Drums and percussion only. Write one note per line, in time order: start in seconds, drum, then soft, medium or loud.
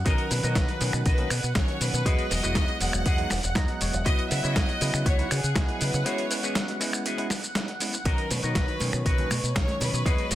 0.06 kick loud
0.06 closed hi-hat medium
0.06 shaker soft
0.18 closed hi-hat soft
0.31 open hi-hat loud
0.31 shaker medium
0.43 closed hi-hat soft
0.43 shaker soft
0.55 kick loud
0.55 snare loud
0.55 closed hi-hat medium
0.55 shaker soft
0.69 closed hi-hat soft
0.81 open hi-hat loud
0.81 shaker medium
0.93 finger snap medium
0.93 closed hi-hat soft
0.93 shaker soft
1.06 kick loud
1.06 closed hi-hat medium
1.06 shaker soft
1.18 closed hi-hat soft
1.30 finger snap medium
1.30 open hi-hat loud
1.30 shaker medium
1.43 closed hi-hat soft
1.43 shaker soft
1.55 finger snap medium
1.55 kick loud
1.55 snare loud
1.55 closed hi-hat medium
1.55 shaker soft
1.68 closed hi-hat soft
1.81 open hi-hat loud
1.81 shaker medium
1.94 closed hi-hat soft
1.94 shaker soft
2.06 kick loud
2.06 closed hi-hat loud
2.06 shaker soft
2.19 closed hi-hat soft
2.31 open hi-hat loud
2.31 shaker medium
2.43 closed hi-hat soft
2.43 shaker soft
2.55 kick loud
2.55 snare loud
2.55 closed hi-hat medium
2.55 shaker soft
2.68 closed hi-hat soft
2.81 open hi-hat loud
2.81 shaker medium
2.93 finger snap medium
2.93 closed hi-hat soft
2.93 shaker soft
3.06 kick loud
3.06 closed hi-hat medium
3.06 shaker soft
3.18 closed hi-hat soft
3.30 finger snap medium
3.30 snare medium
3.30 open hi-hat loud
3.30 shaker medium
3.43 closed hi-hat soft
3.43 shaker soft
3.55 finger snap medium
3.55 kick loud
3.55 snare loud
3.55 closed hi-hat medium
3.55 shaker soft
3.68 closed hi-hat soft
3.81 open hi-hat loud
3.81 shaker medium
3.93 closed hi-hat soft
3.93 shaker soft
4.06 kick loud
4.06 closed hi-hat loud
4.06 shaker soft
4.19 closed hi-hat soft
4.31 open hi-hat loud
4.31 shaker medium
4.44 closed hi-hat soft
4.44 shaker soft
4.56 kick loud
4.56 snare loud
4.56 closed hi-hat loud
4.56 shaker soft
4.69 closed hi-hat soft
4.81 open hi-hat loud
4.81 shaker medium
4.94 finger snap medium
4.94 closed hi-hat soft
4.94 shaker soft
5.06 kick loud
5.06 closed hi-hat loud
5.06 shaker soft
5.19 closed hi-hat soft
5.31 finger snap medium
5.31 open hi-hat loud
5.31 shaker medium
5.43 closed hi-hat soft
5.43 shaker soft
5.56 finger snap medium
5.56 kick loud
5.56 snare loud
5.56 closed hi-hat loud
5.56 shaker soft
5.69 closed hi-hat soft
5.81 open hi-hat loud
5.81 shaker medium
5.93 closed hi-hat soft
5.93 shaker soft
6.06 closed hi-hat loud
6.06 shaker soft
6.18 closed hi-hat soft
6.31 open hi-hat loud
6.31 shaker medium
6.43 closed hi-hat soft
6.43 shaker soft
6.55 snare loud
6.55 closed hi-hat loud
6.55 shaker soft
6.68 closed hi-hat soft
6.81 open hi-hat loud
6.81 shaker medium
6.93 finger snap medium
6.93 closed hi-hat soft
6.93 shaker soft
7.06 closed hi-hat loud
7.06 shaker soft
7.18 closed hi-hat soft
7.30 finger snap medium
7.30 snare medium
7.30 open hi-hat loud
7.30 shaker medium
7.43 closed hi-hat soft
7.43 shaker soft
7.55 finger snap medium
7.55 snare loud
7.55 closed hi-hat loud
7.55 shaker soft
7.68 closed hi-hat soft
7.80 open hi-hat loud
7.80 shaker medium
7.93 closed hi-hat soft
7.93 shaker soft
8.05 kick loud
8.05 closed hi-hat loud
8.05 shaker soft
8.18 closed hi-hat soft
8.31 open hi-hat loud
8.31 high conga medium
8.31 shaker medium
8.43 closed hi-hat soft
8.43 shaker soft
8.55 kick loud
8.55 snare loud
8.55 closed hi-hat loud
8.55 shaker soft
8.68 closed hi-hat soft
8.80 open hi-hat loud
8.80 high conga medium
8.80 shaker medium
8.93 finger snap medium
8.93 closed hi-hat soft
8.93 shaker soft
9.06 kick loud
9.06 closed hi-hat loud
9.06 shaker soft
9.18 closed hi-hat soft
9.18 low conga medium
9.31 finger snap medium
9.31 open hi-hat loud
9.31 high conga loud
9.31 shaker medium
9.44 closed hi-hat soft
9.44 shaker soft
9.56 finger snap medium
9.56 kick loud
9.56 snare loud
9.56 closed hi-hat loud
9.56 shaker soft
9.68 closed hi-hat soft
9.68 high conga medium
9.80 open hi-hat loud
9.80 low conga loud
9.80 shaker medium
9.94 closed hi-hat soft
9.94 shaker soft
10.06 kick loud
10.06 closed hi-hat loud
10.06 shaker soft
10.18 closed hi-hat soft
10.31 open hi-hat loud
10.31 high conga medium
10.31 shaker medium